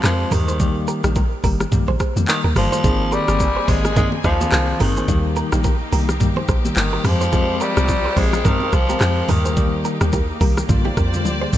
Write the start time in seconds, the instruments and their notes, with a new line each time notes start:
Already playing: tine electric piano F3 G#3 C4 G4
0.04 log drum bass F2, tenor saxophone F3, clean electric guitar G4 A#4, cross-stick, clap, high bongo, shaker
0.31 log drum bass D#2, tine electric piano D#3 G3 A#3 G4, tenor saxophone D#3, clean electric guitar G4 A#4, mid tom, open hi-hat, low conga, shaker
0.48 clean electric guitar G#4 C5, high bongo, shaker
0.60 tine electric piano D#3 G3 A#3 G4, kick, low conga, shaker
0.88 clean electric guitar G4 A#4, shaker
1.04 log drum bass A#1, tine electric piano D#3 G3 A#3 G4, clean electric guitar D#4 G4, cross-stick, shaker
1.16 clean electric guitar G4 A#4, kick, high bongo, shaker
1.44 log drum bass G1, tine electric piano D#3 G3 A#3 G4, clean electric guitar G4 A#4, kick, open hi-hat, shaker
1.60 cross-stick, high bongo, low bongo, shaker
1.72 tine electric piano D#3 G3 A#3 G4, kick, mid tom, low conga, shaker
1.88 log drum bass A#1, clean electric guitar G#4 C5, low bongo
2.00 clean electric guitar G#4 C5, kick, cross-stick, shaker
2.16 log drum bass F2, tine electric piano D#3 G3 A#3 G4, low bongo, shaker
2.28 tenor saxophone D#3, clap, high bongo, shaker
2.44 log drum bass D#2, clean electric guitar G4 A#4
2.55 log drum bass G1, tine electric piano D#3 G3 A#3 G4, tenor saxophone F3, cross-stick, mid tom, open hi-hat, low conga, shaker
2.72 clean electric guitar G#4 C5, high bongo, shaker
2.84 log drum bass G#1, tine electric piano D#3 A#3 C4 G#4, string section A#3 C4 G#5, clean electric guitar D#4 G#4, kick, low conga, shaker
3.12 tenor saxophone G3, clean electric guitar G4 A#4, shaker
3.28 log drum bass G1, tine electric piano D#3 A#3 C4 G#4, cross-stick, shaker
3.40 kick, high bongo, shaker
3.57 clean electric guitar G#4 C5
3.68 log drum bass G#1, tine electric piano D#3 A#3 C4 G#4, tenor saxophone G#3, clean electric guitar G#4 C5, kick, open hi-hat, shaker
3.85 cross-stick, high bongo, low bongo, shaker
3.96 tine electric piano D#3 A#3 C4 G#4, tenor saxophone G#3, clean electric guitar D#4 A#4, kick, mid tom, low conga, shaker
4.12 low bongo
4.24 log drum bass D#2, tenor saxophone F3, clean electric guitar C5 D#5, kick, cross-stick, shaker
4.40 tine electric piano D#3 A#3 C4 G#4, clean electric guitar G#4 C5, low bongo, shaker
4.52 log drum bass C2, clean electric guitar D#4 A#4, cross-stick, clap, high bongo, shaker
4.80 log drum bass G#1, tine electric piano D#3 A#3 C4 G#4, tenor saxophone D#3, clean electric guitar G4 A#4, mid tom, open hi-hat, low conga, shaker
4.97 clean electric guitar G#4 C5, high bongo, shaker
5.08 log drum bass D#2, tine electric piano D#3 G3 A#3 G4, string section A#3 D#4 G4, kick, low conga, shaker
5.36 clean electric guitar G4 A#4, shaker
5.52 log drum bass A#1, tine electric piano D#3 G3 A#3 G4, clean electric guitar D#4 G4, cross-stick, shaker
5.64 clean electric guitar G4 A#4, kick, high bongo, shaker
5.92 log drum bass C2, tine electric piano D#3 G3 A#3 G4, clean electric guitar G4 A#4, open hi-hat, shaker
6.09 cross-stick, high bongo, low bongo, shaker
6.20 tine electric piano D#3 G3 A#3 G4, kick, mid tom, low conga, shaker
6.36 clean electric guitar G#4 C5, low bongo
6.48 log drum bass A#1, clean electric guitar G#4 C5, kick, cross-stick, shaker
6.65 tine electric piano D#3 G3 A#3 G4, low bongo, shaker
6.76 log drum bass G1, tenor saxophone D#3, clap, high bongo, shaker
6.93 clean electric guitar G4 A#4
7.04 log drum bass F2, tine electric piano F3 G#3 C4 G4, string section F3 F4 C5, tenor saxophone F3, cross-stick, mid tom, open hi-hat, low conga, shaker
7.21 clean electric guitar G#4 C5, high bongo, shaker
7.32 tine electric piano F3 G#3 C4 G4, clean electric guitar F4 G#4, kick, low conga, shaker
7.61 tenor saxophone G3, clean electric guitar G4 A#4, shaker
7.77 log drum bass C2, tine electric piano F3 G#3 C4 G4, cross-stick, shaker
7.88 kick, high bongo, shaker
8.05 clean electric guitar G#4 C5
8.17 log drum bass A#1, tine electric piano F3 G#3 C4 G4, tenor saxophone G#3, clean electric guitar G#4 C5, kick, open hi-hat, shaker
8.33 cross-stick, high bongo, low bongo, shaker
8.45 tenor saxophone D#3, tine electric piano F3 G#3 C4 G4, clean electric guitar G4 A#4, kick, mid tom, low conga, shaker
8.60 low bongo
8.73 log drum bass C2, tenor saxophone F3, clean electric guitar G#4 C5, kick, cross-stick, shaker
8.89 tine electric piano F3 G#3 C4 G4, clean electric guitar G4 A#4, low bongo, shaker
9.01 log drum bass F2, clean electric guitar F4 G#4, cross-stick, clap, high bongo, shaker
9.28 log drum bass D#2, tine electric piano D#3 G3 A#3 G4, tenor saxophone D#3, string section A#3 D#4, clean electric guitar G4 A#4, mid tom, open hi-hat, low conga, shaker
9.45 clean electric guitar G#4 C5, high bongo, shaker
9.57 tine electric piano D#3 G3 A#3 G4, kick, low conga, shaker
9.85 clean electric guitar G4 A#4, shaker
10.01 log drum bass D#2, tine electric piano D#3 G3 A#3 G4, clean electric guitar D#4 G4, cross-stick, shaker
10.13 clean electric guitar G4 A#4, kick, high bongo, shaker
10.41 log drum bass C2, tine electric piano D#3 G3 A#3 G4, clean electric guitar G4 A#4, kick, open hi-hat, shaker
10.57 cross-stick, high bongo, low bongo, shaker
10.69 log drum bass A#1, tine electric piano D3 G3 A#3 F4, string section F4 G4 C5 D5, kick, mid tom, low conga, shaker
10.85 clean electric guitar D#4 G4, low bongo
10.97 log drum bass F2, clean electric guitar G4 A#4, kick, cross-stick, shaker
11.13 tine electric piano D3 G3 A#3 F4, low bongo, shaker
11.25 log drum bass D2, high tom, high bongo, shaker
11.41 clean electric guitar G#4 C5
11.53 log drum bass A#1, tine electric piano D3 G3 A#3 F4, mid tom, open hi-hat, low conga, shaker